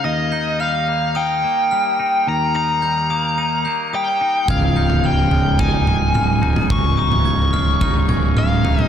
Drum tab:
T2 |----------------|----------------|----------o-o--o|----------o-o--o|
FT |----------------|----------------|o--o--o-o-o---o-|o--o--o-o-o---o-|
BD |----------------|----------------|o-------o-------|o-------o-------|